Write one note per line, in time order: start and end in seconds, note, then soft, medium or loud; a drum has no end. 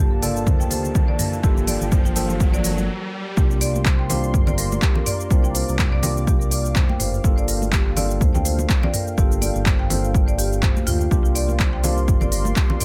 0.00 0.48 G1 loud
0.00 0.20 A#3 medium
0.00 2.85 A#3 medium
0.00 0.20 D4 medium
0.00 0.20 F4 medium
0.00 2.85 G4 medium
0.00 0.20 A4 loud
0.00 1.39 F5 medium
0.00 2.85 A5 medium
0.00 riser medium
0.22 1.41 A#3 medium
0.22 1.41 D4 medium
0.22 1.41 F4 medium
0.22 1.41 A4 loud
0.22 0.35 D5 loud
0.22 open hi-hat medium
0.22 mid tom medium
0.22 cabasa loud
0.36 cabasa soft
0.46 0.91 D2 medium
0.46 0.59 C5 medium
0.46 kick loud
0.46 mid tom medium
0.46 cabasa medium
0.60 0.66 G5 loud
0.60 cabasa soft
0.71 0.78 C5 loud
0.71 open hi-hat medium
0.71 mid tom medium
0.71 cabasa loud
0.85 cabasa soft
0.95 kick loud
0.95 mid tom medium
0.95 cabasa medium
1.08 1.18 D5 loud
1.19 1.31 A#4 medium
1.19 mid tom medium
1.19 open hi-hat medium
1.19 mid tom medium
1.19 cabasa loud
1.33 cabasa soft
1.43 1.76 G1 medium
1.43 2.14 A#3 medium
1.43 2.14 D4 medium
1.43 2.14 F4 medium
1.43 1.51 G4 medium
1.43 2.14 A4 loud
1.43 2.87 G5 medium
1.43 kick loud
1.43 mid tom medium
1.43 cabasa medium
1.57 mid tom medium
1.57 cabasa soft
1.67 1.81 D5 loud
1.67 open hi-hat medium
1.67 mid tom medium
1.67 cabasa loud
1.81 2.89 G1 loud
1.81 mid tom medium
1.81 cabasa soft
1.92 2.04 C5 medium
1.92 kick loud
1.92 mid tom medium
1.92 mid tom loud
1.92 cabasa medium
2.05 2.11 G5 loud
2.05 mid tom medium
2.05 cabasa soft
2.16 2.89 A#3 medium
2.16 2.89 D4 medium
2.16 2.89 F4 medium
2.16 2.89 A4 medium
2.16 2.23 C5 loud
2.16 open hi-hat medium
2.16 mid tom loud
2.16 cabasa loud
2.29 mid tom medium
2.29 cabasa soft
2.40 kick loud
2.40 mid tom loud
2.40 cabasa medium
2.47 mid tom medium
2.54 2.63 D5 loud
2.54 mid tom medium
2.54 cabasa soft
2.59 mid tom medium
2.64 2.77 A#4 medium
2.64 open hi-hat medium
2.64 mid tom loud
2.64 cabasa loud
2.71 mid tom medium
2.78 mid tom medium
2.78 cabasa soft
2.83 mid tom medium
3.37 4.35 C2 loud
3.37 4.07 A#3 medium
3.37 4.07 D4 medium
3.37 4.07 F4 medium
3.37 3.44 G4 medium
3.37 4.07 G4 medium
3.37 7.20 A#4 medium
3.37 7.20 D5 medium
3.37 12.85 F5 medium
3.37 5.29 C6 medium
3.37 kick loud
3.37 cabasa soft
3.51 cabasa soft
3.61 3.74 D5 loud
3.61 open hi-hat loud
3.61 cabasa medium
3.75 high conga medium
3.75 cabasa soft
3.85 3.98 C5 medium
3.85 kick loud
3.85 clap loud
3.85 cabasa medium
3.99 4.05 G5 loud
4.10 5.28 A#3 medium
4.10 5.28 D4 medium
4.10 5.28 F4 medium
4.10 5.28 G4 loud
4.10 4.17 C5 loud
4.10 open hi-hat medium
4.10 low conga loud
4.10 cabasa medium
4.24 cabasa soft
4.34 4.78 G1 medium
4.34 kick loud
4.34 mid tom medium
4.34 cabasa medium
4.47 4.57 D5 loud
4.47 low conga loud
4.47 cabasa soft
4.58 4.70 A#4 medium
4.58 open hi-hat medium
4.58 cabasa medium
4.72 high conga medium
4.72 cabasa soft
4.82 4.90 G4 medium
4.82 kick loud
4.82 clap loud
4.82 cabasa medium
4.95 low conga loud
5.06 5.19 D5 loud
5.06 mid tom medium
5.06 open hi-hat loud
5.06 cabasa medium
5.20 cabasa soft
5.30 5.64 C2 loud
5.30 6.01 A#3 medium
5.30 6.01 D4 medium
5.30 6.01 F4 medium
5.30 6.01 G4 loud
5.30 5.43 C5 medium
5.30 7.22 D6 medium
5.30 kick loud
5.30 cabasa medium
5.44 5.50 G5 loud
5.44 cabasa soft
5.55 5.62 C5 loud
5.55 open hi-hat medium
5.55 cabasa loud
5.68 6.85 C2 loud
5.68 cabasa soft
5.79 kick loud
5.79 clap loud
5.79 mid tom medium
5.79 cabasa medium
5.92 6.02 D5 loud
6.03 7.22 A#3 medium
6.03 7.22 D4 medium
6.03 7.22 F4 medium
6.03 7.22 G4 medium
6.03 6.15 A#4 medium
6.03 open hi-hat medium
6.03 low conga loud
6.03 cabasa loud
6.17 cabasa soft
6.27 6.35 G4 medium
6.27 kick loud
6.27 cabasa medium
6.41 cabasa soft
6.51 6.64 D5 loud
6.51 open hi-hat medium
6.51 cabasa loud
6.65 cabasa soft
6.75 6.88 C5 medium
6.75 kick loud
6.75 clap loud
6.75 mid tom medium
6.75 high conga medium
6.75 low conga medium
6.75 cabasa medium
6.89 6.95 G5 loud
6.89 high conga loud
7.00 7.19 G1 loud
7.00 7.07 C5 loud
7.00 mid tom medium
7.00 open hi-hat medium
7.00 cabasa loud
7.14 cabasa soft
7.24 8.23 G1 medium
7.24 7.94 A#3 medium
7.24 7.94 D4 medium
7.24 7.94 F4 medium
7.24 7.94 A4 loud
7.24 11.07 G5 medium
7.24 kick loud
7.24 cabasa medium
7.38 7.47 D5 loud
7.38 cabasa soft
7.48 7.60 A#4 medium
7.48 open hi-hat medium
7.48 cabasa loud
7.62 high conga medium
7.62 cabasa soft
7.72 7.80 G4 medium
7.72 kick loud
7.72 clap loud
7.72 cabasa medium
7.97 9.15 A#3 medium
7.97 9.15 D4 medium
7.97 9.15 F4 medium
7.97 9.15 A4 loud
7.97 8.10 D5 loud
7.97 open hi-hat medium
7.97 low conga loud
7.97 cabasa medium
8.11 cabasa soft
8.21 8.66 D2 medium
8.21 8.33 C5 medium
8.21 kick loud
8.21 mid tom medium
8.21 cabasa medium
8.34 8.40 G5 loud
8.34 low conga medium
8.34 cabasa soft
8.45 8.52 C5 loud
8.45 open hi-hat medium
8.45 cabasa loud
8.59 high conga loud
8.59 cabasa soft
8.69 kick loud
8.69 clap loud
8.69 cabasa medium
8.83 8.92 D5 loud
8.83 low conga loud
8.94 9.06 A#4 medium
8.94 mid tom medium
8.94 open hi-hat medium
8.94 cabasa loud
9.07 cabasa soft
9.18 9.51 G1 medium
9.18 9.88 A#3 medium
9.18 9.88 D4 medium
9.18 9.88 F4 medium
9.18 9.25 G4 medium
9.18 9.88 A4 medium
9.18 kick loud
9.18 cabasa medium
9.32 cabasa soft
9.41 9.55 D5 loud
9.41 open hi-hat medium
9.41 high conga medium
9.41 cabasa loud
9.56 10.72 G1 loud
9.56 cabasa soft
9.66 9.78 C5 medium
9.66 kick loud
9.66 clap loud
9.66 mid tom medium
9.66 cabasa medium
9.79 9.85 G5 loud
9.90 11.09 A#3 medium
9.90 11.09 D4 medium
9.90 11.09 F4 medium
9.90 11.09 A4 medium
9.90 9.97 C5 loud
9.90 open hi-hat medium
9.90 low conga loud
9.90 cabasa loud
10.04 cabasa soft
10.15 kick loud
10.15 cabasa medium
10.28 10.37 D5 loud
10.28 cabasa soft
10.38 10.51 G4 loud
10.38 open hi-hat medium
10.38 cabasa loud
10.53 cabasa soft
10.62 10.75 C5 loud
10.62 kick loud
10.62 clap loud
10.62 mid tom loud
10.62 high conga medium
10.62 low conga medium
10.62 cabasa medium
10.77 high conga loud
10.77 cabasa soft
10.87 11.06 D2 loud
10.87 10.94 F4 loud
10.87 mid tom loud
10.87 open hi-hat medium
10.87 cabasa medium
11.01 cabasa soft
11.11 12.10 C2 loud
11.11 11.81 A#3 medium
11.11 11.81 D4 medium
11.11 11.81 F4 medium
11.11 11.18 G4 medium
11.11 11.81 G4 loud
11.11 12.85 A#4 medium
11.11 12.85 D5 medium
11.11 12.85 C6 medium
11.11 kick loud
11.11 cabasa medium
11.25 cabasa soft
11.35 11.48 D5 loud
11.35 open hi-hat medium
11.35 cabasa medium
11.49 high conga medium
11.49 cabasa soft
11.59 11.72 C5 medium
11.59 kick loud
11.59 clap loud
11.59 cabasa medium
11.73 11.79 G5 loud
11.84 12.85 A#3 medium
11.84 12.85 D4 medium
11.84 12.85 F4 medium
11.84 12.85 G4 loud
11.84 11.91 C5 loud
11.84 open hi-hat medium
11.84 low conga loud
11.84 cabasa medium
11.98 cabasa soft
12.08 12.53 G1 medium
12.08 kick loud
12.08 mid tom medium
12.08 cabasa medium
12.21 12.31 D5 loud
12.21 low conga medium
12.21 cabasa soft
12.32 12.44 A#4 medium
12.32 open hi-hat medium
12.32 cabasa medium
12.45 high conga medium
12.45 cabasa soft
12.56 12.64 G4 medium
12.56 kick loud
12.56 clap loud
12.56 cabasa medium
12.70 low conga loud
12.80 12.85 D5 loud
12.80 mid tom loud
12.80 open hi-hat medium
12.80 cabasa loud